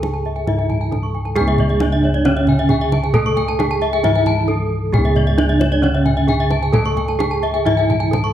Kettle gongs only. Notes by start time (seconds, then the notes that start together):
Already playing: C#2 A4
0.02 D4
0.47 G#2
0.92 D4
1.36 G#4
1.41 C#2
1.81 D4
2.71 D4
3.15 A4
3.60 D4
4.04 G#2
4.49 D4
4.94 G#4
4.98 C#2
5.38 D4
6.29 D4
6.74 A4
7.20 D4
7.66 G#2
8.13 D4